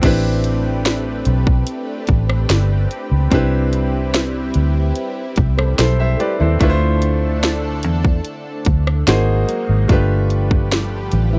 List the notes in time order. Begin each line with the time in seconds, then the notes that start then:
0.02 A1 A3 C4 D4 E4 G4 B4, kick, closed hi-hat, crash
0.06 B4
0.44 closed hi-hat
0.86 snare, closed hi-hat
1.25 B1, closed hi-hat
1.47 kick
1.67 closed hi-hat
2.07 A1, kick, closed hi-hat
2.30 cross-stick
2.50 G1, snare, closed hi-hat
2.91 closed hi-hat
3.11 C#2
3.30 C2 G3 C4 D4 E4 G4, kick, closed hi-hat
3.35 B4
3.73 closed hi-hat
4.14 snare, closed hi-hat
4.54 D2, closed hi-hat
4.95 closed hi-hat
5.36 C2, kick, closed hi-hat
5.57 A4 C5, cross-stick
5.78 B1 A4 C5, snare, closed hi-hat
6.00 C5 E5
6.19 E4 G4 B4 D5, closed hi-hat
6.40 D#2 C4 E4 A4 C5
6.59 D2 D3 A3 D4 E4 F4 A4, kick, closed hi-hat
6.63 B4
6.70 C5
7.02 closed hi-hat
7.44 snare, closed hi-hat
7.83 E2, closed hi-hat
8.05 kick
8.25 closed hi-hat
8.65 D2, kick, closed hi-hat
8.87 cross-stick
9.07 G#1 F#3 G#3 A#3 D#4 F#4 G#4 C5, snare, closed hi-hat
9.49 closed hi-hat
9.69 G#1
9.88 G1 D3 F3 G3 A3 D4 F4 G4 B4, kick, closed hi-hat
9.92 B4
10.30 closed hi-hat
10.51 kick
10.72 snare, closed hi-hat
11.12 A1, closed hi-hat
11.33 E4